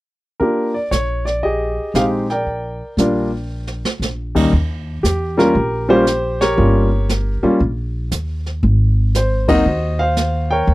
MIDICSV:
0, 0, Header, 1, 5, 480
1, 0, Start_track
1, 0, Tempo, 513699
1, 382, Time_signature, 4, 2, 24, 8
1, 10037, End_track
2, 0, Start_track
2, 0, Title_t, "Grand piano"
2, 0, Program_c, 0, 0
2, 370, Note_on_c, 0, 70, 64
2, 377, Note_on_c, 0, 58, 42
2, 383, Note_on_c, 0, 62, 38
2, 386, Note_on_c, 0, 65, 36
2, 390, Note_on_c, 0, 67, 46
2, 668, Note_off_c, 0, 58, 0
2, 671, Note_off_c, 0, 62, 0
2, 673, Note_off_c, 0, 65, 0
2, 675, Note_off_c, 0, 67, 0
2, 695, Note_on_c, 0, 74, 56
2, 707, Note_off_c, 0, 70, 0
2, 847, Note_off_c, 0, 74, 0
2, 854, Note_on_c, 0, 73, 70
2, 1156, Note_off_c, 0, 73, 0
2, 1171, Note_on_c, 0, 74, 62
2, 1337, Note_on_c, 0, 75, 69
2, 1342, Note_off_c, 0, 74, 0
2, 1353, Note_on_c, 0, 68, 45
2, 1355, Note_on_c, 0, 67, 49
2, 1787, Note_off_c, 0, 75, 0
2, 1817, Note_off_c, 0, 67, 0
2, 1820, Note_on_c, 0, 56, 51
2, 1821, Note_on_c, 0, 60, 44
2, 1826, Note_on_c, 0, 63, 45
2, 1830, Note_on_c, 0, 77, 75
2, 1831, Note_on_c, 0, 67, 58
2, 1901, Note_off_c, 0, 77, 0
2, 2111, Note_off_c, 0, 56, 0
2, 2111, Note_off_c, 0, 60, 0
2, 2114, Note_off_c, 0, 63, 0
2, 2116, Note_off_c, 0, 67, 0
2, 2150, Note_on_c, 0, 79, 68
2, 2165, Note_on_c, 0, 70, 50
2, 2167, Note_on_c, 0, 74, 53
2, 2272, Note_off_c, 0, 68, 0
2, 2787, Note_on_c, 0, 55, 46
2, 2796, Note_on_c, 0, 58, 48
2, 2799, Note_on_c, 0, 62, 50
2, 2799, Note_on_c, 0, 65, 58
2, 3074, Note_off_c, 0, 55, 0
2, 3079, Note_off_c, 0, 58, 0
2, 3080, Note_off_c, 0, 62, 0
2, 3081, Note_off_c, 0, 65, 0
2, 3551, Note_off_c, 0, 79, 0
2, 3558, Note_off_c, 0, 70, 0
2, 3560, Note_off_c, 0, 74, 0
2, 4064, Note_on_c, 0, 39, 56
2, 4067, Note_on_c, 0, 55, 48
2, 4067, Note_on_c, 0, 61, 43
2, 4068, Note_on_c, 0, 58, 48
2, 4072, Note_on_c, 0, 63, 62
2, 4209, Note_off_c, 0, 39, 0
2, 4210, Note_off_c, 0, 55, 0
2, 4210, Note_off_c, 0, 61, 0
2, 4211, Note_off_c, 0, 58, 0
2, 4213, Note_off_c, 0, 63, 0
2, 4701, Note_on_c, 0, 67, 61
2, 5021, Note_on_c, 0, 55, 64
2, 5024, Note_on_c, 0, 58, 61
2, 5027, Note_on_c, 0, 61, 60
2, 5031, Note_off_c, 0, 67, 0
2, 5034, Note_on_c, 0, 65, 74
2, 5034, Note_on_c, 0, 70, 86
2, 5045, Note_on_c, 0, 67, 56
2, 5167, Note_off_c, 0, 55, 0
2, 5168, Note_off_c, 0, 58, 0
2, 5170, Note_off_c, 0, 61, 0
2, 5173, Note_off_c, 0, 65, 0
2, 5500, Note_on_c, 0, 58, 61
2, 5502, Note_off_c, 0, 67, 0
2, 5502, Note_on_c, 0, 55, 64
2, 5502, Note_on_c, 0, 61, 58
2, 5510, Note_on_c, 0, 65, 73
2, 5514, Note_on_c, 0, 72, 86
2, 5516, Note_on_c, 0, 67, 60
2, 5524, Note_off_c, 0, 70, 0
2, 5646, Note_off_c, 0, 58, 0
2, 5647, Note_off_c, 0, 55, 0
2, 5647, Note_off_c, 0, 61, 0
2, 5651, Note_off_c, 0, 65, 0
2, 5985, Note_off_c, 0, 67, 0
2, 5989, Note_on_c, 0, 73, 85
2, 5998, Note_on_c, 0, 70, 63
2, 5999, Note_on_c, 0, 67, 58
2, 6003, Note_off_c, 0, 72, 0
2, 6135, Note_on_c, 0, 55, 48
2, 6143, Note_on_c, 0, 58, 41
2, 6145, Note_on_c, 0, 65, 55
2, 6146, Note_on_c, 0, 61, 44
2, 6428, Note_off_c, 0, 55, 0
2, 6431, Note_off_c, 0, 58, 0
2, 6432, Note_off_c, 0, 65, 0
2, 6433, Note_off_c, 0, 61, 0
2, 6588, Note_off_c, 0, 73, 0
2, 6912, Note_off_c, 0, 70, 0
2, 6913, Note_off_c, 0, 67, 0
2, 6941, Note_on_c, 0, 55, 62
2, 6944, Note_on_c, 0, 58, 55
2, 6950, Note_on_c, 0, 65, 66
2, 6951, Note_on_c, 0, 61, 57
2, 7086, Note_off_c, 0, 55, 0
2, 7087, Note_off_c, 0, 58, 0
2, 7090, Note_off_c, 0, 65, 0
2, 7091, Note_off_c, 0, 61, 0
2, 8559, Note_on_c, 0, 72, 67
2, 8858, Note_on_c, 0, 54, 61
2, 8861, Note_on_c, 0, 58, 61
2, 8862, Note_off_c, 0, 72, 0
2, 8864, Note_on_c, 0, 75, 80
2, 8867, Note_on_c, 0, 60, 54
2, 8870, Note_on_c, 0, 63, 76
2, 8876, Note_on_c, 0, 72, 56
2, 8877, Note_on_c, 0, 66, 56
2, 9002, Note_off_c, 0, 54, 0
2, 9004, Note_off_c, 0, 58, 0
2, 9007, Note_off_c, 0, 60, 0
2, 9008, Note_off_c, 0, 63, 0
2, 9335, Note_off_c, 0, 72, 0
2, 9337, Note_on_c, 0, 77, 80
2, 9349, Note_on_c, 0, 72, 58
2, 9355, Note_off_c, 0, 75, 0
2, 9789, Note_off_c, 0, 66, 0
2, 9816, Note_on_c, 0, 79, 80
2, 9831, Note_off_c, 0, 77, 0
2, 9831, Note_on_c, 0, 73, 58
2, 9833, Note_on_c, 0, 70, 58
2, 9945, Note_off_c, 0, 72, 0
2, 10037, Note_off_c, 0, 70, 0
2, 10037, Note_off_c, 0, 73, 0
2, 10037, Note_off_c, 0, 79, 0
2, 10037, End_track
3, 0, Start_track
3, 0, Title_t, "Upright bass"
3, 0, Program_c, 1, 32
3, 853, Note_on_c, 1, 34, 64
3, 1654, Note_off_c, 1, 34, 0
3, 1813, Note_on_c, 1, 34, 58
3, 2614, Note_off_c, 1, 34, 0
3, 2776, Note_on_c, 1, 34, 66
3, 3576, Note_off_c, 1, 34, 0
3, 3734, Note_on_c, 1, 34, 56
3, 4186, Note_off_c, 1, 34, 0
3, 4230, Note_on_c, 1, 39, 81
3, 4674, Note_off_c, 1, 39, 0
3, 4707, Note_on_c, 1, 40, 67
3, 5152, Note_off_c, 1, 40, 0
3, 5186, Note_on_c, 1, 34, 75
3, 6107, Note_off_c, 1, 34, 0
3, 6144, Note_on_c, 1, 31, 80
3, 6906, Note_off_c, 1, 31, 0
3, 7105, Note_on_c, 1, 34, 79
3, 7549, Note_off_c, 1, 34, 0
3, 7582, Note_on_c, 1, 39, 59
3, 8028, Note_off_c, 1, 39, 0
3, 8063, Note_on_c, 1, 32, 85
3, 8983, Note_off_c, 1, 32, 0
3, 9022, Note_on_c, 1, 39, 79
3, 9942, Note_off_c, 1, 39, 0
3, 9973, Note_on_c, 1, 39, 81
3, 10037, Note_off_c, 1, 39, 0
3, 10037, End_track
4, 0, Start_track
4, 0, Title_t, "Muted upright bass strokes"
4, 6942, Note_on_c, 9, 29, 36
4, 7036, Note_off_c, 9, 29, 0
4, 10037, End_track
5, 0, Start_track
5, 0, Title_t, "Drums"
5, 381, Note_on_c, 9, 25, 36
5, 381, Note_on_c, 9, 36, 30
5, 474, Note_off_c, 9, 36, 0
5, 859, Note_on_c, 9, 44, 43
5, 860, Note_on_c, 9, 38, 40
5, 953, Note_off_c, 9, 44, 0
5, 954, Note_off_c, 9, 38, 0
5, 1182, Note_on_c, 9, 38, 28
5, 1275, Note_off_c, 9, 38, 0
5, 1336, Note_off_c, 9, 25, 0
5, 1336, Note_on_c, 9, 25, 35
5, 1341, Note_on_c, 9, 36, 26
5, 1434, Note_off_c, 9, 36, 0
5, 1820, Note_on_c, 9, 44, 40
5, 1821, Note_on_c, 9, 38, 44
5, 1913, Note_off_c, 9, 44, 0
5, 1914, Note_off_c, 9, 38, 0
5, 2148, Note_on_c, 9, 38, 28
5, 2241, Note_off_c, 9, 38, 0
5, 2306, Note_on_c, 9, 36, 28
5, 2307, Note_off_c, 9, 25, 0
5, 2307, Note_on_c, 9, 25, 42
5, 2399, Note_off_c, 9, 36, 0
5, 2786, Note_on_c, 9, 44, 44
5, 2787, Note_on_c, 9, 38, 42
5, 2880, Note_off_c, 9, 44, 0
5, 2881, Note_off_c, 9, 38, 0
5, 3433, Note_on_c, 9, 38, 42
5, 3526, Note_off_c, 9, 38, 0
5, 3598, Note_on_c, 9, 38, 66
5, 3692, Note_off_c, 9, 38, 0
5, 3756, Note_on_c, 9, 44, 41
5, 3757, Note_on_c, 9, 38, 45
5, 3850, Note_off_c, 9, 44, 0
5, 3851, Note_off_c, 9, 38, 0
5, 4073, Note_on_c, 9, 36, 54
5, 4075, Note_on_c, 9, 49, 55
5, 4166, Note_off_c, 9, 36, 0
5, 4168, Note_off_c, 9, 49, 0
5, 4232, Note_on_c, 9, 36, 28
5, 4237, Note_off_c, 9, 25, 0
5, 4237, Note_on_c, 9, 25, 48
5, 4326, Note_off_c, 9, 36, 0
5, 4714, Note_on_c, 9, 44, 53
5, 4715, Note_on_c, 9, 38, 46
5, 4807, Note_off_c, 9, 44, 0
5, 4808, Note_off_c, 9, 38, 0
5, 5039, Note_on_c, 9, 38, 43
5, 5133, Note_off_c, 9, 38, 0
5, 5191, Note_on_c, 9, 36, 29
5, 5194, Note_off_c, 9, 25, 0
5, 5194, Note_on_c, 9, 25, 42
5, 5284, Note_off_c, 9, 36, 0
5, 5671, Note_on_c, 9, 44, 62
5, 5672, Note_on_c, 9, 38, 55
5, 5764, Note_off_c, 9, 44, 0
5, 5765, Note_off_c, 9, 38, 0
5, 5992, Note_on_c, 9, 38, 43
5, 6085, Note_off_c, 9, 38, 0
5, 6149, Note_on_c, 9, 36, 32
5, 6150, Note_off_c, 9, 25, 0
5, 6150, Note_on_c, 9, 25, 37
5, 6242, Note_off_c, 9, 36, 0
5, 6627, Note_on_c, 9, 44, 45
5, 6628, Note_on_c, 9, 38, 50
5, 6720, Note_off_c, 9, 44, 0
5, 6721, Note_off_c, 9, 38, 0
5, 7107, Note_off_c, 9, 25, 0
5, 7107, Note_on_c, 9, 25, 43
5, 7107, Note_on_c, 9, 36, 30
5, 7200, Note_off_c, 9, 36, 0
5, 7583, Note_on_c, 9, 44, 56
5, 7584, Note_on_c, 9, 38, 52
5, 7676, Note_off_c, 9, 44, 0
5, 7677, Note_off_c, 9, 38, 0
5, 7908, Note_on_c, 9, 38, 33
5, 8001, Note_off_c, 9, 38, 0
5, 8067, Note_on_c, 9, 36, 33
5, 8069, Note_off_c, 9, 25, 0
5, 8069, Note_on_c, 9, 25, 45
5, 8160, Note_off_c, 9, 36, 0
5, 8547, Note_on_c, 9, 44, 55
5, 8548, Note_on_c, 9, 38, 50
5, 8640, Note_off_c, 9, 44, 0
5, 8641, Note_off_c, 9, 38, 0
5, 8862, Note_on_c, 9, 51, 62
5, 8864, Note_on_c, 9, 36, 67
5, 8956, Note_off_c, 9, 51, 0
5, 8957, Note_off_c, 9, 36, 0
5, 9025, Note_off_c, 9, 25, 0
5, 9025, Note_on_c, 9, 25, 35
5, 9499, Note_on_c, 9, 44, 50
5, 9500, Note_on_c, 9, 38, 53
5, 9593, Note_off_c, 9, 38, 0
5, 9593, Note_off_c, 9, 44, 0
5, 9976, Note_off_c, 9, 25, 0
5, 9976, Note_on_c, 9, 25, 42
5, 9978, Note_on_c, 9, 36, 32
5, 10037, Note_off_c, 9, 25, 0
5, 10037, Note_off_c, 9, 36, 0
5, 10037, End_track
0, 0, End_of_file